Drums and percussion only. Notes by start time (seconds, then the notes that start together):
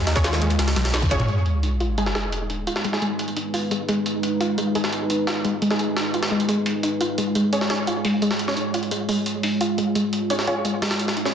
0.07 snare, closed hi-hat
0.16 kick, snare, closed hi-hat
0.24 snare, closed hi-hat
0.33 snare, closed hi-hat
0.42 closed hi-hat
0.50 closed hi-hat
0.59 snare, closed hi-hat
0.68 snare, closed hi-hat
0.76 snare, closed hi-hat, high tom
0.85 snare, closed hi-hat
0.94 snare, closed hi-hat
1.02 kick, closed hi-hat, mid tom
1.11 kick, closed hi-hat
1.20 closed hi-hat, mid tom
1.28 closed hi-hat
1.46 closed hi-hat
1.63 closed hi-hat
1.80 closed hi-hat
1.98 closed hi-hat
2.06 snare
2.15 snare, closed hi-hat
2.32 closed hi-hat
2.50 closed hi-hat, open hi-hat
2.67 closed hi-hat
2.76 snare
2.84 closed hi-hat
2.93 snare
3.02 closed hi-hat
3.19 closed hi-hat
3.28 closed hi-hat
3.37 closed hi-hat
3.54 open hi-hat
3.71 closed hi-hat
3.88 closed hi-hat, open hi-hat
4.06 closed hi-hat
4.23 closed hi-hat
4.41 closed hi-hat
4.58 closed hi-hat
4.75 closed hi-hat
4.84 snare
4.93 closed hi-hat
5.10 closed hi-hat
5.27 snare, closed hi-hat, open hi-hat
5.45 closed hi-hat
5.62 closed hi-hat
5.71 snare
5.79 closed hi-hat
5.97 snare, closed hi-hat
6.14 closed hi-hat
6.23 snare, closed hi-hat
6.40 closed hi-hat
6.49 closed hi-hat
6.66 closed hi-hat, open hi-hat
6.83 closed hi-hat
7.01 closed hi-hat
7.18 closed hi-hat
7.35 closed hi-hat
7.53 closed hi-hat
7.61 snare
7.70 snare, closed hi-hat
7.87 closed hi-hat
8.05 closed hi-hat, open hi-hat
8.22 closed hi-hat
8.31 snare
8.39 closed hi-hat
8.48 snare
8.57 closed hi-hat
8.74 closed hi-hat
8.83 closed hi-hat
8.91 closed hi-hat
9.09 open hi-hat
9.26 closed hi-hat
9.43 closed hi-hat, open hi-hat
9.61 closed hi-hat
9.78 closed hi-hat
9.95 closed hi-hat
10.13 closed hi-hat
10.30 closed hi-hat
10.39 snare
10.47 closed hi-hat
10.65 closed hi-hat
10.82 snare, closed hi-hat, open hi-hat
10.91 snare, closed hi-hat
10.99 closed hi-hat
11.08 snare
11.17 closed hi-hat
11.25 snare